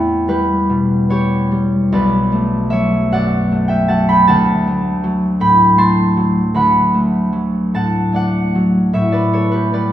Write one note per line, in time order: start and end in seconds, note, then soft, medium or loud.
0.00 1.95 E2 medium
0.00 1.09 B3 medium
0.00 0.27 B4 medium
0.00 1.96 E5 medium
0.00 1.95 G5 medium
0.28 1.50 G3 medium
0.28 1.10 G4 medium
0.28 1.93 B4 medium
0.69 1.94 B2 medium
1.10 4.31 B3 medium
1.10 1.95 G4 medium
1.10 2.71 C#5 medium
1.51 1.95 G3 medium
1.92 4.32 B1 medium
1.92 4.33 B4 medium
1.92 3.13 D5 medium
2.32 3.50 A3 medium
2.70 3.88 F#3 medium
2.70 4.32 C#5 medium
2.70 3.39 E5 medium
3.12 4.32 F#2 medium
3.12 7.04 D5 medium
3.12 3.88 F#5 medium
3.52 4.66 A3 medium
3.68 6.60 E5 medium
3.68 4.02 G5 medium
3.88 5.02 F#3 medium
3.88 4.28 F#5 medium
3.88 4.22 A5 medium
4.09 4.32 G5 medium
4.09 4.42 B5 loud
4.27 6.54 D2 medium
4.27 6.55 F#5 medium
4.27 5.77 A5 loud
4.67 5.77 A3 medium
5.04 6.16 F#3 medium
5.40 6.60 A2 medium
5.40 6.60 G5 medium
5.40 6.07 B5 loud
5.78 6.93 A3 medium
5.78 7.73 A5 medium
5.78 7.10 C6 medium
6.17 7.31 F#3 medium
6.54 8.94 D2 medium
6.54 7.75 F#5 medium
6.54 9.92 B5 loud
6.94 8.12 A3 medium
7.32 8.54 F#3 soft
7.74 8.92 A2 soft
7.74 8.13 F#5 medium
7.74 9.92 A5 medium
8.12 9.92 A3 soft
8.12 8.97 D5 medium
8.12 8.97 F#5 medium
8.55 8.97 F#3 medium
8.93 9.92 A2 medium
8.93 9.32 C#5 medium
8.93 9.92 E5 medium
9.12 9.50 B4 medium
9.12 9.47 D5 medium
9.33 9.92 B3 soft
9.33 9.92 A4 medium
9.33 9.68 C#5 medium
9.52 9.92 G4 medium
9.52 9.73 B4 medium
9.73 9.92 G3 soft
9.73 9.92 B4 medium
9.73 9.92 D5 medium